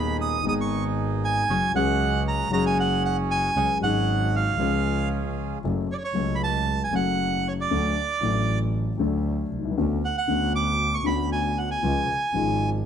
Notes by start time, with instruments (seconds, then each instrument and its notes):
Already playing: grand piano D#1 D#2 D#3 G#3 B3 G#4, double bass D#2, bandoneon B3 D#4 G#4 B5
0.21 bandoneon D#6
0.43 grand piano G#1 G#2 D#3 G#3 B3, double bass G#1, bandoneon B3 D#4 G#4
0.47 grand piano G#4, bandoneon D#6
0.61 bandoneon C#6
1.25 bandoneon G#5
1.49 double bass F#1, grand piano F#2 F#3 G#3 C#4 G#4, bandoneon C#4 F#4 G#4
1.73 double bass C#2, grand piano C#2 C#3 F#3 G#3 C#4, bandoneon C#4 F#4 G#4 F#5
1.77 grand piano G#4
2.28 bandoneon A#5
2.50 double bass F#1, grand piano F#2 F#3 G#3 C#4 G#4, bandoneon C#4 F#4 G#4 A#5
2.66 bandoneon G#5
2.80 bandoneon F#5
3.05 bandoneon F#5
3.31 bandoneon G#5
3.55 double bass C#2, grand piano C#2 C#3 F#3 G#3 C#4 G#4, bandoneon C#4 F#4 G#4
3.80 double bass G#1, grand piano G#1 G#2 F#3 G#3 C#4, bandoneon C#4 F#4 G#4 F#5
3.84 grand piano G#4
4.35 bandoneon F5
4.57 double bass C#2, grand piano C#2 C#3 F3 G#3 C#4, bandoneon C#4 F4 G#4
4.61 grand piano G#4
5.63 double bass F#1, grand piano F#2 F#3 A3 C#4 A4
5.92 bandoneon C#5 D5
5.98 bandoneon C#5
6.04 bandoneon C#5
6.13 double bass C#2, grand piano C#2 C#3 F#3 A3 C#4
6.17 grand piano A4
6.35 bandoneon B5
6.43 bandoneon A5
6.84 bandoneon G#5
6.93 double bass F#1, grand piano F#2 F#3 A3 C#4 A4, bandoneon F#5
7.48 bandoneon C#5
7.61 bandoneon D5
7.70 grand piano D2 D3 F#3 A3 D4 A4, double bass D2
8.21 grand piano A1 A2 F#3 A3 D4, double bass A1
8.25 grand piano A4
8.98 grand piano D2 D3 F#3 A3 D4 A4, double bass D2
9.51 double bass C2
9.58 grand piano B1
9.65 grand piano C2
9.71 grand piano C#2
9.77 double bass D2, grand piano D2 D3 B3 C#4 F#4
10.05 bandoneon F#5
10.18 bandoneon F#5
10.28 double bass D2, grand piano D2 D3 B3 C#4
10.32 grand piano F#4
10.55 bandoneon D6
10.94 bandoneon C#6
11.04 double bass D2, grand piano D2 D3 B3 C#4, bandoneon B5
11.08 grand piano F#4
11.32 bandoneon G#5
11.58 bandoneon F#5
11.71 bandoneon G#5
11.82 double bass C#2, grand piano C#2 C#3 F3 G#3 F4
12.32 grand piano G#1 G#2 C#3 F3 G#3, double bass G#1
12.36 grand piano F4